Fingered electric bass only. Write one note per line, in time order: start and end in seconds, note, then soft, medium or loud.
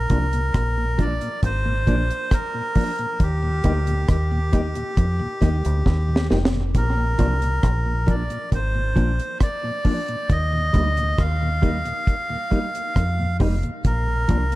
0.11 0.52 C2 medium
0.55 1.18 A#1 medium
1.43 1.85 G#1 loud
1.88 2.09 A#1 medium
3.20 3.62 D#2 loud
3.65 4.07 D2 medium
4.09 4.73 D#2 medium
4.98 5.19 F2 medium
5.42 5.64 D#2 medium
5.66 5.86 D2 medium
5.86 6.28 D#2 medium
6.32 6.73 F1 medium
6.75 7.17 A#1 loud
7.20 7.61 C2 medium
7.64 8.27 A#1 medium
8.53 8.94 G#1 medium
8.97 9.19 A#1 medium
10.30 10.72 D#2 medium
10.75 11.16 D2 medium
11.19 11.83 D#2 medium
12.97 13.38 F2 medium
13.41 13.62 F1 medium
13.85 14.27 A#1 loud
14.30 14.55 C2 medium